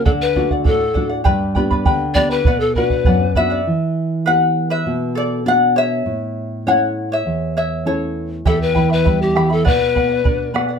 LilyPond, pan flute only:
\new Staff \with { instrumentName = "Pan flute" } { \time 2/4 \key e \dorian \tempo 4 = 100 a'16 b'8 r16 a'8. r16 | r4. d''16 b'16~ | b'16 a'16 b'4 r8 | r2 |
r2 | r2 | r2 | a'16 b'8 b'8 g'8 a'16 |
b'4. r8 | }